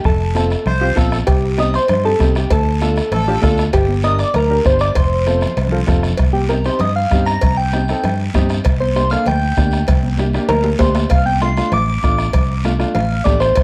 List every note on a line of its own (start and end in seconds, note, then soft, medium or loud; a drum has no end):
0.04 0.54 F1 loud
0.04 0.36 A4 loud
0.04 bombo low medium
0.04 bombo rim medium
0.04 low conga medium
0.04 long guiro medium
0.35 0.51 C4 medium
0.35 0.51 F4 medium
0.35 0.51 A4 medium
0.35 0.65 A4 medium
0.35 bombo rim medium
0.35 high conga medium
0.35 short guiro medium
0.50 bombo rim medium
0.50 short guiro medium
0.66 0.90 C2 medium
0.66 0.98 C5 loud
0.66 bombo rim medium
0.66 low conga medium
0.66 long guiro medium
0.81 0.86 C4 medium
0.81 0.86 F4 medium
0.81 0.87 G4 medium
0.96 1.21 A#1 medium
0.96 1.17 C4 medium
0.96 1.18 F4 medium
0.96 1.18 A4 medium
0.96 bombo low medium
0.96 bombo rim medium
0.96 high conga medium
0.96 short guiro medium
1.12 bombo rim medium
1.12 short guiro medium
1.27 1.77 C2 medium
1.27 1.61 G4 loud
1.27 bombo low medium
1.27 bombo rim medium
1.27 cowbell loud
1.27 long guiro medium
1.57 1.74 C4 medium
1.57 1.74 D#4 medium
1.57 1.74 G4 medium
1.57 1.77 D#5 loud
1.57 bombo rim medium
1.57 high conga medium
1.57 short guiro medium
1.74 2.05 C5 loud
1.74 bombo rim medium
1.74 short guiro medium
1.88 2.14 G2 medium
1.88 bombo rim medium
1.88 cowbell medium
1.88 low conga medium
1.88 long guiro medium
2.04 2.09 C4 medium
2.04 2.09 D#4 medium
2.04 2.10 G4 medium
2.04 2.33 A4 loud
2.19 2.44 C2 medium
2.19 2.41 C4 medium
2.19 2.41 D#4 medium
2.19 2.41 G4 medium
2.19 bombo low medium
2.19 bombo rim medium
2.19 high conga medium
2.19 short guiro medium
2.35 2.54 G4 medium
2.35 bombo rim medium
2.35 short guiro medium
2.50 3.00 D2 loud
2.50 2.82 A4 loud
2.50 bombo low medium
2.50 bombo rim medium
2.50 cowbell loud
2.50 long guiro medium
2.81 2.97 D4 medium
2.81 2.97 F4 medium
2.81 2.98 A4 medium
2.81 3.10 A4 medium
2.81 bombo rim medium
2.81 high conga medium
2.81 short guiro medium
2.96 bombo rim medium
2.96 short guiro medium
3.11 3.36 A1 medium
3.11 3.40 A4 loud
3.11 bombo rim medium
3.11 cowbell medium
3.11 low conga medium
3.11 long guiro medium
3.28 3.33 D4 medium
3.28 3.33 F4 medium
3.28 3.33 G4 loud
3.42 3.67 D2 medium
3.42 3.64 D4 medium
3.42 3.64 F4 medium
3.42 3.63 A4 loud
3.42 3.64 A4 medium
3.42 bombo low medium
3.42 bombo rim medium
3.42 high conga medium
3.42 low timbale medium
3.42 short guiro medium
3.58 bombo rim medium
3.58 short guiro medium
3.73 4.23 G1 loud
3.73 4.05 G4 loud
3.73 bombo low medium
3.73 bombo rim medium
3.73 cowbell loud
3.73 long guiro medium
3.88 high conga medium
4.03 4.20 D4 medium
4.03 4.20 G4 medium
4.03 4.21 A#4 medium
4.03 4.21 D#5 loud
4.03 bombo rim medium
4.03 high conga medium
4.03 short guiro medium
4.19 4.35 D5 loud
4.19 bombo rim medium
4.19 short guiro medium
4.34 4.59 D2 loud
4.34 4.64 A#4 loud
4.34 bombo rim medium
4.34 cowbell medium
4.34 low conga medium
4.34 long guiro medium
4.50 4.55 D4 medium
4.50 4.55 G4 medium
4.50 4.56 A#4 medium
4.64 4.90 G1 loud
4.64 4.86 D4 medium
4.64 4.87 G4 medium
4.64 4.87 C5 medium
4.64 4.82 C5 loud
4.64 bombo low medium
4.64 bombo rim medium
4.64 high conga medium
4.64 short guiro medium
4.79 4.95 D5 loud
4.79 bombo rim loud
4.79 short guiro medium
4.95 5.45 F1 loud
4.95 5.84 C5 loud
4.95 bombo low medium
4.95 bombo rim medium
4.95 cowbell loud
4.95 long guiro medium
5.26 5.43 C4 medium
5.26 5.43 F4 medium
5.26 5.43 A4 medium
5.26 bombo rim medium
5.26 high conga medium
5.26 short guiro medium
5.41 bombo rim medium
5.41 short guiro medium
5.47 low conga medium
5.57 5.82 C2 medium
5.57 bombo rim medium
5.57 cowbell medium
5.57 long guiro medium
5.67 low conga loud
5.72 5.77 C4 medium
5.72 5.78 F4 medium
5.72 5.78 A4 medium
5.77 low conga medium
5.87 6.13 F1 medium
5.87 6.09 C4 medium
5.87 6.09 F4 medium
5.87 6.09 A4 loud
5.87 bombo low medium
5.87 bombo rim medium
5.87 low conga medium
5.87 low timbale medium
5.87 short guiro medium
6.03 bombo rim medium
6.03 short guiro medium
6.08 low conga loud
6.17 6.68 C2 medium
6.17 bombo low medium
6.17 bombo rim medium
6.17 cowbell loud
6.17 long guiro medium
6.33 6.49 G4 medium
6.33 high conga medium
6.49 6.55 C4 medium
6.49 6.55 D#4 medium
6.49 6.55 G4 medium
6.49 6.64 A#4 medium
6.49 bombo rim medium
6.49 high conga medium
6.49 short guiro medium
6.64 6.81 C4 medium
6.64 6.81 D#4 medium
6.64 6.81 G4 medium
6.64 6.80 C5 medium
6.64 bombo rim medium
6.64 short guiro medium
6.79 7.05 G2 medium
6.79 6.95 D#5 medium
6.79 bombo rim medium
6.79 cowbell medium
6.79 low conga medium
6.79 long guiro medium
6.96 7.26 F5 medium
7.10 7.36 G2 medium
7.10 7.33 C4 medium
7.10 7.33 D#4 medium
7.10 7.34 G4 medium
7.10 bombo low medium
7.10 bombo rim medium
7.10 high conga medium
7.10 short guiro medium
7.26 7.56 A#5 loud
7.26 bombo rim medium
7.26 short guiro medium
7.41 7.92 C2 medium
7.41 bombo low medium
7.41 bombo rim medium
7.41 cowbell loud
7.41 low conga medium
7.41 long guiro medium
7.57 8.47 G5 loud
7.72 7.78 C4 medium
7.72 7.79 D#4 medium
7.72 7.79 G4 medium
7.72 bombo rim medium
7.72 high conga medium
7.72 short guiro medium
7.88 8.05 C4 medium
7.88 8.05 D#4 medium
7.88 8.05 A4 medium
7.88 bombo rim medium
7.88 short guiro medium
8.03 8.28 G2 medium
8.03 bombo rim medium
8.03 cowbell medium
8.03 low conga medium
8.03 long guiro medium
8.34 8.59 G2 medium
8.34 8.56 C4 medium
8.34 8.56 D#4 medium
8.34 8.57 G4 medium
8.34 bombo low medium
8.34 bombo rim medium
8.34 high conga medium
8.34 low conga medium
8.34 low timbale medium
8.34 short guiro medium
8.49 bombo rim medium
8.49 short guiro medium
8.64 9.15 C2 medium
8.64 bombo low medium
8.64 bombo rim medium
8.64 cowbell loud
8.64 long guiro medium
8.80 8.95 C5 loud
8.80 high conga medium
8.95 9.01 A#3 medium
8.95 9.01 D4 medium
8.95 9.01 G4 medium
8.95 9.11 C5 loud
8.95 bombo rim medium
8.95 high conga medium
8.95 short guiro medium
9.10 9.28 A#3 medium
9.10 9.28 D4 medium
9.10 9.28 A4 medium
9.10 9.26 F5 loud
9.10 bombo rim medium
9.10 short guiro medium
9.26 9.51 D2 medium
9.26 10.16 G5 loud
9.26 bombo rim medium
9.26 cowbell medium
9.26 low conga medium
9.26 long guiro medium
9.55 9.82 D2 loud
9.55 9.79 A#3 medium
9.55 9.79 D4 medium
9.55 9.79 G4 medium
9.55 bombo low medium
9.55 bombo rim medium
9.55 high conga medium
9.55 low timbale medium
9.55 short guiro medium
9.71 bombo rim medium
9.71 short guiro medium
9.87 10.37 C2 loud
9.87 bombo low medium
9.87 bombo rim medium
9.87 cowbell loud
9.87 low conga medium
9.87 long guiro medium
10.03 high conga medium
10.18 10.24 A#3 medium
10.18 10.24 D4 medium
10.18 10.24 G4 medium
10.18 bombo rim medium
10.18 high conga medium
10.18 short guiro medium
10.33 10.50 A#3 medium
10.33 10.50 D4 medium
10.33 10.51 G4 medium
10.33 bombo rim medium
10.33 short guiro medium
10.49 10.74 D2 medium
10.49 10.78 A#4 loud
10.49 bombo rim medium
10.49 cowbell medium
10.49 low conga medium
10.49 high timbale medium
10.49 long guiro medium
10.64 low timbale medium
10.79 11.05 D2 medium
10.79 11.02 A#3 medium
10.79 11.02 D4 medium
10.79 11.02 G4 medium
10.79 11.09 C5 medium
10.79 bombo low medium
10.79 bombo rim medium
10.79 high conga medium
10.79 low timbale medium
10.79 short guiro medium
10.95 bombo rim medium
10.95 low timbale loud
10.95 short guiro medium
11.09 11.60 C2 loud
11.09 11.25 F5 medium
11.09 bombo low medium
11.09 bombo rim medium
11.09 cowbell loud
11.09 long guiro medium
11.26 11.41 G5 medium
11.26 high conga medium
11.40 11.47 A3 medium
11.40 11.47 D4 medium
11.40 11.48 F4 medium
11.40 11.71 C6 medium
11.40 bombo rim medium
11.40 high conga medium
11.40 short guiro medium
11.57 11.73 A3 medium
11.57 11.74 D4 medium
11.57 11.73 F4 medium
11.57 bombo rim medium
11.57 short guiro medium
11.72 11.97 A1 medium
11.72 11.88 D6 medium
11.72 bombo rim medium
11.72 cowbell medium
11.72 low conga medium
11.72 long guiro medium
11.89 12.78 D6 loud
12.03 12.28 A1 loud
12.03 12.25 A3 medium
12.03 12.25 D4 medium
12.03 12.25 F4 medium
12.03 bombo low medium
12.03 bombo rim medium
12.03 high conga medium
12.03 short guiro medium
12.18 bombo rim medium
12.18 short guiro medium
12.33 12.83 C2 medium
12.33 bombo low medium
12.33 bombo rim medium
12.33 cowbell loud
12.33 low conga medium
12.33 long guiro medium
12.64 12.70 A3 medium
12.64 12.70 D4 medium
12.64 12.70 F4 medium
12.64 bombo rim medium
12.64 high conga medium
12.64 short guiro medium
12.79 12.95 A3 medium
12.79 12.96 D4 medium
12.79 12.96 F4 medium
12.79 bombo rim medium
12.79 short guiro medium
12.95 13.20 A1 medium
12.95 13.24 F5 medium
12.95 bombo rim medium
12.95 cowbell medium
12.95 low conga medium
12.95 long guiro medium
13.24 13.51 A1 loud
13.24 13.47 A3 medium
13.24 13.47 D4 medium
13.24 13.47 G4 medium
13.24 13.40 D5 medium
13.24 bombo low medium
13.24 bombo rim medium
13.24 high conga medium
13.24 low conga medium
13.24 low timbale medium
13.24 short guiro medium
13.40 13.55 C5 loud
13.40 bombo rim medium
13.40 short guiro medium
13.55 13.63 C2 loud
13.55 13.63 C5 medium
13.55 bombo low medium
13.55 bombo rim medium
13.55 cowbell loud
13.55 long guiro medium